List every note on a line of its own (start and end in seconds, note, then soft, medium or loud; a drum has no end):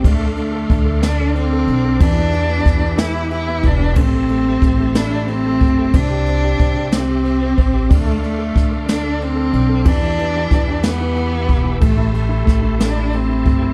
0.03 0.66 D2 loud
0.03 0.35 A3 medium
0.03 0.35 D4 medium
0.03 1.99 A4 medium
0.03 1.99 F5 medium
0.03 1.99 C6 medium
0.03 3.93 D6 medium
0.03 kick loud
0.03 ride medium
0.19 0.50 A4 medium
0.36 1.04 A3 medium
0.36 0.67 D4 medium
0.36 ride soft
0.52 0.84 A4 medium
0.69 1.64 D2 loud
0.69 1.01 D4 medium
0.69 kick medium
0.69 ride soft
0.85 1.18 A4 medium
1.02 1.34 D4 medium
1.02 1.35 D4 loud
1.02 snare loud
1.02 ride medium
1.20 1.51 A4 medium
1.35 2.02 C4 loud
1.35 1.67 D4 medium
1.35 ride soft
1.53 1.83 A4 medium
1.67 1.98 B1 medium
1.67 2.00 D4 medium
1.67 ride soft
1.85 2.00 A4 medium
2.00 2.62 E2 loud
2.00 2.31 E3 medium
2.00 3.01 D4 loud
2.00 3.95 G4 medium
2.00 3.95 E5 medium
2.00 3.95 B5 medium
2.00 kick loud
2.00 ride medium
2.17 2.47 B3 medium
2.33 2.64 E3 medium
2.33 ride soft
2.49 2.80 B3 medium
2.66 3.60 E2 medium
2.66 2.96 E3 medium
2.66 kick medium
2.66 snare soft
2.66 ride soft
2.81 3.12 B3 medium
2.97 3.29 E3 medium
2.97 3.31 E4 loud
2.97 snare loud
2.97 ride medium
3.14 3.47 B3 medium
3.30 3.63 E3 medium
3.30 3.68 E4 loud
3.30 ride soft
3.48 3.79 B3 medium
3.63 3.94 E1 medium
3.63 3.96 E3 medium
3.63 4.00 D4 loud
3.63 kick medium
3.63 ride soft
3.81 3.96 B3 medium
3.96 4.58 A1 loud
3.96 4.13 A3 medium
3.96 4.98 C4 loud
3.96 7.87 G4 medium
3.96 5.92 E5 medium
3.96 5.92 A5 medium
3.96 7.87 C6 medium
3.96 kick loud
3.96 ride medium
4.15 4.29 A3 medium
4.29 4.46 A3 medium
4.29 ride soft
4.47 4.63 A3 medium
4.62 5.57 A1 medium
4.62 4.78 A3 medium
4.62 kick loud
4.62 snare soft
4.62 ride soft
4.80 5.10 A3 medium
4.95 5.28 D4 medium
4.95 5.91 E4 medium
4.95 snare loud
4.95 ride medium
5.11 5.27 A3 medium
5.28 5.44 A3 soft
5.28 5.97 C4 loud
5.28 ride soft
5.45 5.60 A3 medium
5.60 5.92 G1 medium
5.60 5.77 A3 medium
5.60 kick medium
5.60 ride soft
5.78 5.94 A3 soft
5.94 6.56 C2 loud
5.94 6.27 C4 medium
5.94 6.96 D4 loud
5.94 7.88 E5 medium
5.94 9.82 D6 medium
5.94 kick loud
5.94 ride medium
6.10 6.42 G4 soft
6.26 6.58 C4 medium
6.26 ride soft
6.44 6.75 G4 medium
6.59 7.54 C2 medium
6.59 6.90 C4 medium
6.59 kick loud
6.59 ride soft
6.76 7.07 G4 medium
6.92 7.22 C4 medium
6.92 7.94 C4 medium
6.92 snare loud
6.92 ride medium
7.08 7.40 G4 soft
7.24 7.56 C4 medium
7.24 ride soft
7.41 7.72 G4 medium
7.57 7.89 A1 medium
7.57 7.89 C4 medium
7.57 kick medium
7.57 ride soft
7.73 7.90 G4 medium
7.89 8.52 D2 loud
7.89 8.23 A3 loud
7.89 8.21 D4 medium
7.89 9.85 A4 medium
7.89 9.84 F5 medium
7.89 9.84 C6 medium
7.89 kick loud
7.89 ride medium
8.06 8.37 A4 soft
8.23 8.84 A3 medium
8.23 8.53 D4 medium
8.23 ride soft
8.39 8.69 A4 medium
8.54 9.49 D2 medium
8.54 8.85 D4 medium
8.54 kick medium
8.54 snare soft
8.54 ride soft
8.71 9.01 A4 medium
8.86 9.18 D4 medium
8.86 9.24 D4 medium
8.86 snare loud
8.86 ride medium
9.03 9.34 A4 medium
9.19 9.89 C4 loud
9.19 9.51 D4 medium
9.19 ride soft
9.36 9.67 A4 medium
9.53 9.84 B1 medium
9.53 9.85 D4 medium
9.53 ride soft
9.69 9.85 A4 medium
9.85 10.47 E2 loud
9.85 10.01 E3 medium
9.85 10.88 D4 loud
9.85 13.73 G4 medium
9.85 13.73 E5 medium
9.85 11.79 B5 medium
9.85 11.79 D6 medium
9.85 kick loud
9.85 ride medium
10.02 10.17 E3 medium
10.19 10.35 E3 medium
10.19 ride soft
10.36 10.51 E3 medium
10.51 11.45 E2 loud
10.51 10.67 E3 medium
10.51 kick medium
10.51 snare soft
10.51 ride soft
10.69 10.99 E3 medium
10.83 11.79 B3 medium
10.83 11.82 B3 loud
10.83 snare loud
10.83 ride medium
11.01 11.14 E3 medium
11.16 11.31 E3 medium
11.16 ride soft
11.32 11.46 E3 medium
11.47 11.80 E1 medium
11.47 11.62 E3 medium
11.47 kick medium
11.47 ride soft
11.63 11.80 E3 medium
11.80 12.43 A1 loud
11.80 12.11 A3 medium
11.80 12.13 A3 medium
11.80 13.73 A5 medium
11.80 13.73 C6 medium
11.80 kick loud
11.80 ride medium
11.97 12.27 E4 medium
12.12 12.44 A3 medium
12.12 12.83 A3 medium
12.12 ride soft
12.29 12.61 E4 medium
12.45 13.42 A1 medium
12.45 12.77 A3 medium
12.45 kick medium
12.45 snare soft
12.45 ride soft
12.62 12.95 E4 medium
12.79 13.12 A3 medium
12.79 13.16 D4 medium
12.79 snare loud
12.79 ride medium
12.96 13.27 E4 soft
13.13 13.44 A3 medium
13.13 13.73 C4 medium
13.13 ride soft
13.29 13.61 E4 soft
13.45 13.73 G1 medium
13.45 13.73 A3 medium
13.45 kick medium
13.45 ride soft
13.62 13.73 E4 medium